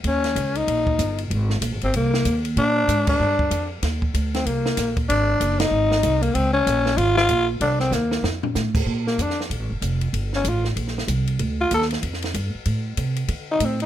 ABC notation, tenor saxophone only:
X:1
M:4/4
L:1/8
Q:"Swing" 1/4=190
K:Bb
V:1 name="Tenor saxophone"
_D3 E4 z | z3 C B,3 z | D3 D4 z | z3 C B,3 z |
D3 E4 B, | C _D3 F F2 z | D C B,2 z4 | z B, D z4 z |
z _D F z4 z | z F A z4 z | z4 z E C E |]